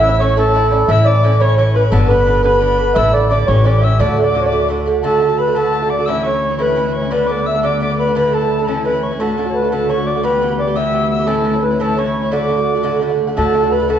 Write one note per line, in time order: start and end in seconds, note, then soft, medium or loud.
0.00 0.87 A1 medium
0.00 0.20 C#4 medium
0.00 0.20 E4 medium
0.00 0.21 E5 loud
0.00 0.22 E6 medium
0.05 0.20 E3 soft
0.09 0.19 E5 loud
0.19 0.37 A2 medium
0.19 0.37 E3 medium
0.19 0.36 C#4 medium
0.19 0.36 E4 medium
0.19 0.37 C#5 loud
0.19 0.36 C#5 medium
0.19 0.37 C#6 medium
0.37 0.53 A2 medium
0.37 0.54 E3 medium
0.37 0.55 C#4 medium
0.37 0.54 E4 medium
0.37 0.90 A4 loud
0.37 0.69 A4 medium
0.37 0.67 A5 medium
0.54 0.71 A2 medium
0.54 0.72 E3 medium
0.54 0.71 C#4 medium
0.54 0.70 E4 medium
0.71 0.88 E3 soft
0.71 0.88 C#4 medium
0.71 0.88 E4 medium
0.71 0.88 D5 medium
0.88 1.90 A1 medium
0.88 1.06 A2 medium
0.88 1.06 E3 medium
0.88 1.06 C#4 loud
0.88 1.05 E4 loud
0.88 1.06 E5 loud
0.88 1.05 E5 medium
0.88 1.09 E6 medium
1.05 1.22 E3 soft
1.05 1.23 C#4 soft
1.05 1.23 E4 medium
1.05 1.41 D5 loud
1.05 1.41 D5 medium
1.05 1.43 D6 medium
1.23 1.40 A2 medium
1.23 1.40 E3 medium
1.23 1.39 C#4 medium
1.23 1.39 E4 medium
1.40 1.57 A2 medium
1.40 1.57 E3 medium
1.40 1.58 C#4 medium
1.40 1.57 E4 medium
1.40 1.55 C#5 loud
1.40 1.57 C#5 medium
1.40 1.57 C#6 medium
1.57 1.75 A2 medium
1.57 1.75 E3 medium
1.57 1.75 C#4 medium
1.57 1.74 E4 medium
1.57 1.75 C#5 loud
1.57 1.74 C#5 medium
1.57 1.77 C#6 medium
1.75 1.92 E3 soft
1.75 1.92 C#4 soft
1.75 1.92 E4 medium
1.75 1.83 B4 medium
1.75 1.92 B4 medium
1.75 1.95 B5 medium
1.91 2.94 G1 medium
1.91 2.09 G2 medium
1.91 2.09 D3 medium
1.91 2.08 B3 loud
1.91 2.07 D4 loud
1.91 2.08 A4 medium
1.91 2.10 A4 medium
1.91 2.12 A5 medium
2.08 2.25 D3 soft
2.08 2.26 B3 medium
2.08 2.26 D4 medium
2.08 2.42 B4 loud
2.08 2.42 B4 medium
2.08 2.45 B5 medium
2.26 2.43 G2 medium
2.26 2.43 D3 medium
2.26 2.42 B3 medium
2.26 2.42 D4 medium
2.43 2.59 G2 medium
2.43 2.60 D3 medium
2.43 2.61 B3 medium
2.43 2.61 D4 medium
2.43 2.97 B4 medium
2.43 2.93 B4 medium
2.43 2.98 B5 medium
2.61 2.78 G2 medium
2.61 2.79 D3 medium
2.61 2.78 B3 medium
2.61 2.77 D4 medium
2.78 2.95 D3 medium
2.78 2.95 B3 medium
2.78 2.96 D4 medium
2.94 3.47 A1 medium
2.94 3.13 G2 medium
2.94 3.13 D3 medium
2.94 3.12 A3 loud
2.94 3.11 E4 loud
2.94 3.11 E5 loud
2.94 3.12 E5 medium
2.94 3.13 E6 medium
3.13 3.29 D3 soft
3.13 3.30 A3 medium
3.13 3.30 E4 medium
3.13 3.28 D5 loud
3.13 3.30 D5 medium
3.29 3.48 G2 medium
3.29 3.48 D3 medium
3.29 3.48 A3 medium
3.29 3.47 E4 medium
3.29 3.48 D5 loud
3.29 3.47 D5 medium
3.29 3.50 D6 medium
3.47 3.99 A1 medium
3.47 3.63 A2 medium
3.47 3.64 E3 medium
3.47 3.65 C#4 medium
3.47 3.65 G4 medium
3.47 3.65 C#5 loud
3.47 3.64 C#5 medium
3.47 3.68 C#6 medium
3.64 3.82 A2 medium
3.64 3.82 E3 medium
3.64 3.81 C#4 medium
3.64 3.80 G4 medium
3.64 3.82 D5 medium
3.64 3.85 D6 medium
3.81 4.00 E3 soft
3.81 4.00 C#4 medium
3.81 3.99 G4 medium
3.81 3.98 E5 medium
3.81 3.99 E5 medium
3.81 4.02 E6 medium
3.99 5.02 D2 medium
3.99 4.17 A2 medium
3.99 4.17 D3 medium
3.99 4.16 A3 loud
3.99 4.15 F#4 medium
3.99 4.17 D5 medium
3.99 4.22 D5 medium
3.99 4.23 D6 medium
4.16 4.34 D3 soft
4.16 4.34 A3 soft
4.16 4.34 F#4 medium
4.16 4.23 E5 medium
4.22 4.40 D5 medium
4.22 4.45 D5 medium
4.22 4.45 D6 medium
4.34 4.52 A2 medium
4.34 4.52 D3 medium
4.34 4.51 A3 medium
4.34 4.51 F#4 medium
4.41 4.46 C#5 medium
4.46 4.67 D5 medium
4.46 4.68 D5 loud
4.46 4.68 D6 medium
4.52 4.67 A2 medium
4.52 4.68 D3 medium
4.52 4.69 A3 medium
4.52 4.69 F#4 medium
4.68 4.86 A2 medium
4.68 4.86 D3 medium
4.68 4.86 A3 medium
4.68 4.84 F#4 medium
4.86 5.02 D3 medium
4.86 5.03 A3 medium
4.86 5.03 F#4 medium
5.02 9.20 D2 medium
5.02 5.19 A2 medium
5.02 5.20 D3 medium
5.02 5.20 A3 medium
5.02 5.21 F#4 medium
5.02 5.40 A4 medium
5.02 5.40 A5 medium
5.20 5.29 A2 medium
5.20 5.29 D3 medium
5.20 5.29 A3 medium
5.20 5.27 F#4 medium
5.29 5.48 D3 soft
5.29 5.47 A3 soft
5.29 5.46 F#4 medium
5.38 5.57 B4 medium
5.38 5.56 B5 medium
5.47 5.54 D3 soft
5.47 5.55 A3 medium
5.47 5.55 F#4 soft
5.55 5.71 A2 medium
5.55 5.72 D3 medium
5.55 5.72 A3 medium
5.55 5.73 F#4 medium
5.55 5.89 A4 medium
5.55 5.91 A5 medium
5.72 5.81 A2 medium
5.72 5.82 D3 medium
5.72 5.81 A3 medium
5.72 5.81 F#4 medium
5.82 6.00 D3 soft
5.82 5.99 A3 medium
5.82 5.97 F#4 soft
5.90 6.09 D5 medium
5.90 6.07 D6 medium
5.99 6.07 D3 soft
5.99 6.08 A3 soft
5.99 6.08 F#4 soft
6.06 6.23 A2 medium
6.06 6.24 E3 medium
6.06 6.25 C#4 medium
6.06 6.25 E4 medium
6.06 6.26 E5 loud
6.06 6.25 E6 medium
6.23 6.33 A2 medium
6.23 6.34 E3 medium
6.23 6.33 C#4 medium
6.23 6.32 E4 medium
6.23 6.62 C#5 loud
6.23 6.60 C#6 medium
6.33 6.51 E3 soft
6.33 6.50 C#4 soft
6.33 6.49 E4 medium
6.50 6.58 E3 soft
6.50 6.59 C#4 soft
6.50 6.59 E4 soft
6.58 6.74 A2 medium
6.58 6.75 E3 medium
6.58 6.75 C#4 medium
6.58 6.76 E4 medium
6.58 6.96 B4 medium
6.58 6.89 B5 medium
6.75 6.85 A2 medium
6.75 6.85 E3 medium
6.75 6.84 C#4 medium
6.75 6.83 E4 medium
6.84 7.03 E3 soft
6.84 7.02 C#4 soft
6.84 7.01 E4 medium
6.89 6.94 B5 medium
6.89 7.12 C#6 medium
6.96 7.12 C#5 medium
7.02 7.11 E3 soft
7.02 7.11 C#4 soft
7.02 7.11 E4 medium
7.11 7.26 G2 medium
7.11 7.27 D3 medium
7.11 7.28 B3 medium
7.11 7.28 D4 medium
7.11 7.30 B4 medium
7.11 7.28 B5 medium
7.27 7.37 G2 medium
7.27 7.38 D3 medium
7.27 7.37 B3 medium
7.27 7.36 D4 medium
7.27 7.48 D6 medium
7.31 7.46 D5 loud
7.37 7.55 D3 soft
7.37 7.55 B3 soft
7.37 7.53 D4 soft
7.46 7.65 E5 loud
7.46 7.62 E6 medium
7.55 7.62 D3 soft
7.55 7.63 B3 soft
7.55 7.63 D4 medium
7.63 7.79 G2 medium
7.63 7.80 D3 medium
7.63 7.81 B3 medium
7.63 7.81 D4 medium
7.63 7.81 D5 loud
7.63 7.80 D6 medium
7.80 7.90 G2 medium
7.80 7.90 D3 medium
7.80 7.89 B3 medium
7.80 7.88 D4 medium
7.80 7.98 D5 medium
7.80 7.97 D6 medium
7.90 8.07 D3 soft
7.90 8.06 B3 soft
7.90 8.05 D4 soft
7.98 8.15 B4 medium
7.98 8.15 B5 medium
8.07 8.15 D3 soft
8.07 8.16 B3 soft
8.07 8.16 D4 soft
8.15 8.31 A2 medium
8.15 8.32 D3 medium
8.15 8.33 A3 medium
8.15 8.33 E4 medium
8.15 8.33 B4 medium
8.15 8.36 B5 medium
8.32 8.42 A2 medium
8.32 8.42 D3 medium
8.32 8.41 A3 medium
8.32 8.39 E4 medium
8.32 8.66 A4 medium
8.32 8.63 A5 medium
8.41 8.60 D3 soft
8.41 8.59 A3 soft
8.41 8.57 E4 medium
8.59 8.68 D3 soft
8.59 8.68 A3 soft
8.59 8.67 E4 soft
8.63 8.69 B5 medium
8.68 8.83 A2 medium
8.68 8.84 E3 medium
8.68 8.85 C#4 medium
8.68 8.85 E4 medium
8.68 8.84 A4 medium
8.68 8.85 A5 medium
8.85 8.94 A2 medium
8.85 8.94 E3 medium
8.85 8.93 C#4 medium
8.85 8.91 E4 medium
8.85 9.02 B4 medium
8.85 9.05 B5 medium
8.93 9.12 E3 soft
8.93 9.11 C#4 soft
8.93 9.10 E4 soft
9.02 9.20 C#5 medium
9.02 9.22 C#6 medium
9.11 9.20 E3 soft
9.11 9.20 C#4 soft
9.11 9.20 E4 medium
9.19 13.41 D2 medium
9.19 9.36 A2 medium
9.19 9.37 D3 medium
9.19 9.37 A3 medium
9.19 9.38 F#4 medium
9.19 9.51 A4 medium
9.19 9.71 A5 medium
9.37 9.46 A2 medium
9.37 9.46 D3 medium
9.37 9.45 A3 medium
9.37 9.44 F#4 medium
9.45 9.63 D3 soft
9.45 9.62 A3 soft
9.45 9.61 F#4 soft
9.50 9.55 C#5 medium
9.54 9.73 B4 medium
9.62 9.71 D3 soft
9.62 9.72 A3 soft
9.62 9.72 F#4 soft
9.72 9.88 A2 medium
9.72 9.88 D3 medium
9.72 9.89 A3 medium
9.72 9.89 F#4 medium
9.72 9.90 A4 medium
9.72 9.91 A5 medium
9.89 9.98 A2 medium
9.89 9.98 D3 medium
9.89 9.98 A3 medium
9.89 9.96 F#4 medium
9.89 10.07 C#5 medium
9.89 10.08 C#6 medium
9.98 10.16 D3 soft
9.98 10.15 A3 soft
9.98 10.14 F#4 medium
10.06 10.25 D5 medium
10.06 10.26 D6 medium
10.15 10.24 D3 soft
10.15 10.24 A3 soft
10.15 10.24 F#4 soft
10.23 10.40 G2 medium
10.23 10.41 E3 medium
10.23 10.41 B3 medium
10.23 10.42 G4 medium
10.23 10.60 B4 medium
10.23 10.58 B5 medium
10.41 10.50 G2 medium
10.41 10.50 E3 medium
10.41 10.49 B3 medium
10.41 10.48 G4 medium
10.49 10.68 E3 soft
10.49 10.67 B3 soft
10.49 10.66 G4 soft
10.58 10.77 D5 medium
10.58 10.77 D6 medium
10.67 10.75 E3 soft
10.67 10.75 B3 soft
10.67 10.75 G4 medium
10.76 10.92 G2 medium
10.76 10.92 E3 medium
10.76 10.93 B3 medium
10.76 10.94 G4 medium
10.76 11.09 E5 medium
10.76 11.10 E6 medium
10.93 11.02 G2 medium
10.93 11.02 E3 medium
10.93 11.02 B3 medium
10.93 11.01 G4 medium
11.02 11.20 E3 soft
11.02 11.19 B3 soft
11.02 11.18 G4 soft
11.11 11.29 E5 medium
11.11 11.29 E6 medium
11.19 11.26 E3 soft
11.19 11.27 B3 soft
11.19 11.28 G4 soft
11.27 11.43 A2 medium
11.27 11.44 E3 medium
11.27 11.45 C#4 medium
11.27 11.45 E4 medium
11.27 11.64 A4 medium
11.27 11.57 A5 medium
11.44 11.54 A2 medium
11.44 11.54 E3 medium
11.44 11.53 C#4 medium
11.44 11.52 E4 medium
11.53 11.71 E3 soft
11.53 11.71 C#4 medium
11.53 11.69 E4 soft
11.62 11.81 B4 medium
11.71 11.79 E3 soft
11.71 11.80 C#4 soft
11.71 11.80 E4 medium
11.80 11.96 A2 medium
11.80 11.96 E3 medium
11.80 11.97 C#4 medium
11.80 11.98 E4 medium
11.80 11.98 A4 medium
11.80 12.00 A5 medium
11.97 12.06 A2 medium
11.97 12.06 E3 medium
11.97 12.05 C#4 medium
11.97 12.04 E4 medium
11.97 12.33 C#5 medium
11.97 12.33 C#6 medium
12.05 12.24 E3 soft
12.05 12.23 C#4 soft
12.05 12.22 E4 soft
12.23 12.31 E3 soft
12.23 12.32 C#4 soft
12.23 12.32 E4 soft
12.31 12.47 A2 medium
12.31 12.48 D3 medium
12.31 12.49 A3 medium
12.31 12.49 F#4 medium
12.31 12.98 D5 medium
12.31 12.99 D6 medium
12.48 12.58 A2 medium
12.48 12.58 D3 medium
12.48 12.57 A3 medium
12.48 12.56 F#4 medium
12.57 12.76 D3 soft
12.57 12.75 A3 soft
12.57 12.74 F#4 medium
12.75 12.82 D3 soft
12.75 12.83 A3 medium
12.75 12.83 F#4 medium
12.83 13.00 A2 medium
12.83 13.00 D3 medium
12.83 13.01 A3 medium
12.83 13.02 F#4 medium
13.01 13.10 A2 medium
13.01 13.11 D3 medium
13.01 13.09 A3 medium
13.01 13.08 F#4 medium
13.09 13.28 D3 soft
13.09 13.27 A3 soft
13.09 13.26 F#4 medium
13.27 13.36 D3 soft
13.27 13.36 A3 soft
13.27 13.36 F#4 medium
13.36 13.99 D2 medium
13.36 13.52 A2 medium
13.36 13.53 D3 medium
13.36 13.54 A3 medium
13.36 13.54 F#4 loud
13.36 13.69 A4 medium
13.36 13.73 A4 loud
13.36 13.73 A5 medium
13.53 13.63 A2 medium
13.53 13.63 D3 medium
13.53 13.62 A3 medium
13.53 13.61 F#4 medium
13.62 13.81 D3 soft
13.62 13.80 A3 soft
13.62 13.79 F#4 medium
13.71 13.88 B4 medium
13.71 13.90 B4 medium
13.71 13.91 B5 medium
13.80 13.88 D3 soft
13.80 13.88 A3 soft
13.80 13.89 F#4 medium
13.88 13.99 A2 medium
13.88 13.99 D3 medium
13.88 13.99 A3 medium
13.88 13.99 F#4 medium
13.88 13.99 A4 medium
13.88 13.99 A5 medium